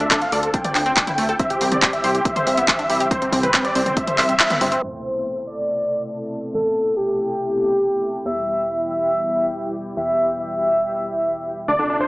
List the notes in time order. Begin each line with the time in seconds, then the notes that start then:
Already playing: D3 A3 C4 F4 C5
0.00 D4 E5, closed hi-hat
0.11 D4 A4, kick, clap, closed hi-hat
0.22 F5, closed hi-hat
0.32 D2 A4 D5, open hi-hat
0.43 A4, closed hi-hat
0.54 D4 G5, kick, closed hi-hat
0.64 D5, closed hi-hat, mid tom
0.75 D2 D4, clap, open hi-hat
0.86 C4, closed hi-hat
0.97 D4, kick, clap, closed hi-hat
1.07 E4, closed hi-hat, mid tom
1.18 D2 A3, open hi-hat
1.29 A4, closed hi-hat
1.39 E3 G3 C4 G4 E5, kick, closed hi-hat
1.50 C3 G4, closed hi-hat
1.61 C2 C4 G4, open hi-hat
1.72 C4 D5, closed hi-hat, mid tom
1.82 C4 G4, kick, clap, closed hi-hat
1.93 E5, closed hi-hat
2.04 C2 G4 C5, open hi-hat
2.15 G4, closed hi-hat
2.25 C4 E5, kick, closed hi-hat
2.36 C5, closed hi-hat, mid tom
2.47 C2 C4, open hi-hat
2.57 B3, closed hi-hat
2.68 C4, kick, clap, closed hi-hat
2.79 D4, closed hi-hat
2.90 C2 G3, open hi-hat
3.00 G4, closed hi-hat
3.11 C4 C5, kick, closed hi-hat
3.22 C3 C4, closed hi-hat
3.32 C2 C4, kick, open hi-hat
3.43 C4 B4, closed hi-hat, mid tom
3.54 C4, kick, clap, closed hi-hat
3.65 D5, closed hi-hat
3.75 C2 C4 C5, open hi-hat
3.86 C4, closed hi-hat, mid tom
3.97 C4 E5, kick, closed hi-hat
4.07 C5, closed hi-hat, mid tom
4.18 C2 C5, clap, open hi-hat
4.29 C4, closed hi-hat
4.40 E4, clap, closed hi-hat
4.50 B3, closed hi-hat, mid tom
4.61 G1 C4, open hi-hat
4.72 C4, closed hi-hat
4.82 A1 B2 C3 A3 E4 A4 C5, sub drop
5.47 D5
6.54 A1 A4
6.97 G4
8.25 E2 B2 E3 G3 G4 E5
8.90 E5
9.97 E2 E5
10.39 E5
11.68 D2 C3 F3 A3 D4 A4 D5
11.79 D3 D4
11.90 D4
12.01 D4 C5